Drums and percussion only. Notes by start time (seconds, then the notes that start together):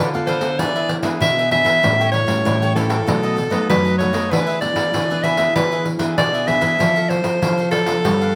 0.14 pandeiro
0.27 pandeiro
0.41 pandeiro
0.59 pandeiro
0.76 pandeiro
0.89 pandeiro
1.03 pandeiro
1.22 pandeiro
1.38 pandeiro
1.51 pandeiro
1.66 pandeiro
1.84 pandeiro
2.01 pandeiro
2.14 pandeiro
2.28 pandeiro
2.46 pandeiro
2.63 pandeiro
2.76 pandeiro
2.90 pandeiro
3.08 pandeiro
3.25 pandeiro
3.38 pandeiro
3.52 pandeiro
3.70 pandeiro
3.87 pandeiro
4.00 pandeiro
4.14 pandeiro
4.33 pandeiro
4.49 pandeiro
4.62 pandeiro
4.76 pandeiro
4.94 pandeiro
5.11 pandeiro
5.24 pandeiro
5.37 pandeiro
5.56 pandeiro
5.73 pandeiro
5.85 pandeiro
5.99 pandeiro
6.18 pandeiro
6.34 pandeiro
6.48 pandeiro
6.61 pandeiro
6.80 pandeiro
6.97 pandeiro
7.10 pandeiro
7.24 pandeiro
7.42 pandeiro
7.59 pandeiro
7.72 pandeiro
7.86 pandeiro
8.05 pandeiro
8.21 pandeiro